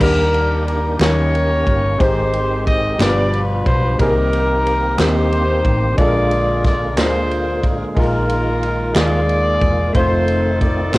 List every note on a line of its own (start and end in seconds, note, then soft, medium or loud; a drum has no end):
0.00 0.96 D#2 loud
0.00 2.97 D#3 medium
0.00 0.97 D#3 medium
0.00 0.78 G3 medium
0.00 0.78 A#3 medium
0.00 1.98 A#3 medium
0.00 0.79 D4 medium
0.00 1.00 D4 medium
0.00 0.98 D4 medium
0.00 0.99 G4 medium
0.00 0.79 G4 medium
0.00 0.98 G4 medium
0.00 0.66 A#4 loud
0.00 0.80 A#4 medium
0.00 kick loud
0.00 crash loud
0.34 ride soft
0.68 0.98 A#4 medium
0.68 ride soft
0.99 1.62 D#2 loud
0.99 1.96 D#3 medium
0.99 1.06 F#3 medium
0.99 1.78 A#3 medium
0.99 1.79 C#4 medium
0.99 2.00 C#4 medium
0.99 1.79 D#4 medium
0.99 3.97 G4 medium
0.99 1.97 G4 medium
0.99 1.97 A#4 medium
0.99 1.80 A#4 medium
0.99 2.00 C#5 loud
0.99 snare loud
0.99 clap medium
0.99 ride medium
1.05 1.81 G3 medium
1.35 ride soft
1.66 1.97 G1 loud
1.66 kick medium
1.66 ride soft
1.98 2.96 G#1 loud
1.98 2.96 G#2 medium
1.98 2.77 G#3 medium
1.98 2.99 G#3 medium
1.98 2.77 C4 medium
1.98 2.99 C4 medium
1.98 2.78 D#4 medium
1.98 2.78 G4 medium
1.98 2.67 C5 loud
1.98 2.79 C5 medium
1.98 kick loud
1.98 ride medium
2.03 2.97 D#4 medium
2.03 2.97 G4 medium
2.34 ride soft
2.67 2.98 D#5 loud
2.67 kick loud
2.67 ride soft
2.98 3.62 G1 loud
2.98 3.96 G2 medium
2.98 3.98 B2 medium
2.98 3.99 F3 medium
2.98 3.77 G3 medium
2.98 3.78 B3 medium
2.98 3.98 D4 medium
2.98 3.78 D4 medium
2.98 3.78 F4 medium
2.98 3.40 D5 loud
2.98 snare loud
2.98 clap medium
2.98 ride medium
3.03 3.97 F4 medium
3.03 3.08 A#4 medium
3.03 3.97 B4 medium
3.09 3.82 B4 medium
3.33 ride soft
3.66 3.96 B1 loud
3.66 3.97 C5 loud
3.66 kick loud
3.66 ride soft
3.98 4.95 C2 loud
3.98 4.95 C3 medium
3.98 5.97 D#3 medium
3.98 4.77 G3 medium
3.98 4.77 A#3 medium
3.98 9.92 A#3 medium
3.98 4.77 C4 medium
3.98 5.97 C4 medium
3.98 4.78 D#4 medium
3.98 5.97 G4 medium
3.98 4.96 G4 medium
3.98 4.99 A#4 loud
3.98 kick loud
3.98 ride medium
4.02 4.96 D#4 medium
4.02 4.07 G#4 medium
4.08 4.82 A#4 medium
4.33 ride soft
4.67 ride soft
4.97 5.61 D#2 loud
4.97 5.76 G3 medium
4.97 5.76 A#3 medium
4.97 5.77 C4 medium
4.97 5.06 D4 medium
4.97 5.98 C5 loud
4.97 snare loud
4.97 clap loud
4.97 ride medium
5.01 5.96 D#4 medium
5.01 5.78 G4 medium
5.01 5.96 G4 medium
5.07 5.81 D#4 medium
5.33 ride soft
5.65 5.95 A1 loud
5.65 kick medium
5.65 ride soft
5.97 6.97 A#1 loud
5.97 6.94 A#2 medium
5.97 7.95 D3 medium
5.97 6.75 G#3 medium
5.97 7.95 G#3 medium
5.97 6.76 A#3 medium
5.97 6.76 D4 medium
5.97 10.98 F4 medium
5.97 6.76 F4 medium
5.97 6.95 G#4 medium
5.97 6.06 A4 medium
5.97 6.61 D5 loud
5.97 kick loud
5.97 ride medium
6.01 6.95 F4 medium
6.07 6.80 A#4 medium
6.31 ride soft
6.64 6.95 D5 loud
6.64 kick medium
6.64 snare soft
6.64 ride soft
6.96 7.63 D2 medium
6.96 7.74 G#3 medium
6.96 7.75 A#3 medium
6.96 7.75 D4 medium
6.96 7.76 F4 medium
6.96 7.70 C5 loud
6.96 7.76 C5 medium
6.96 snare loud
6.96 clap medium
6.96 ride medium
7.01 7.94 F4 medium
7.01 7.94 G#4 medium
7.31 ride soft
7.63 7.94 A1 medium
7.63 kick loud
7.63 ride soft
7.95 8.92 A#1 loud
7.95 8.92 A#2 medium
7.95 9.93 D#3 medium
7.95 8.73 G#3 medium
7.95 9.93 G#3 medium
7.95 8.74 A#3 medium
7.95 8.74 D#4 medium
7.95 8.75 F4 medium
7.95 8.92 A#4 loud
7.95 kick loud
7.95 ride medium
7.99 8.94 D#4 medium
7.99 8.93 F4 medium
7.99 8.75 A#4 medium
8.29 ride soft
8.63 ride soft
8.93 9.58 D#2 loud
8.93 9.72 G#3 medium
8.93 9.73 A#3 medium
8.93 9.73 D#4 medium
8.93 9.74 F4 medium
8.93 9.91 D5 loud
8.93 snare loud
8.93 clap loud
8.93 ride medium
8.98 9.92 F4 medium
8.98 9.74 G#4 medium
8.98 9.92 G#4 medium
9.29 ride soft
9.61 9.92 E1 medium
9.61 kick loud
9.61 ride soft
9.93 10.90 F1 loud
9.93 10.98 D#3 medium
9.93 10.71 A3 medium
9.93 10.98 A3 medium
9.93 10.72 C4 medium
9.93 10.98 C4 medium
9.93 10.73 D#4 medium
9.93 10.91 D#4 medium
9.93 10.73 F4 medium
9.93 10.91 A4 medium
9.93 10.57 C5 loud
9.93 kick loud
9.93 ride medium
9.97 10.74 C5 medium
10.28 ride soft
10.61 10.94 D5 medium
10.61 kick loud
10.61 ride soft
10.92 10.98 A1 medium
10.92 10.98 A3 medium
10.92 10.98 C4 medium
10.92 10.98 D#4 medium
10.92 10.98 C5 loud
10.92 snare loud
10.92 clap medium
10.92 ride medium